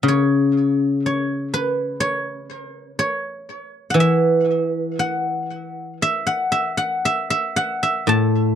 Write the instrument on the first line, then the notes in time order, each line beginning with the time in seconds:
guzheng
0.03 C#3
0.08 C#5
1.06 C#5
1.54 B4
2.00 C#5
2.99 C#5
3.90 E3 F#5
4.00 E5
4.99 F#5
6.02 E5
6.27 F#5
6.52 E5
6.77 F#5
7.05 E5
7.30 E5
7.56 F#5
7.83 E5
8.07 A2 A5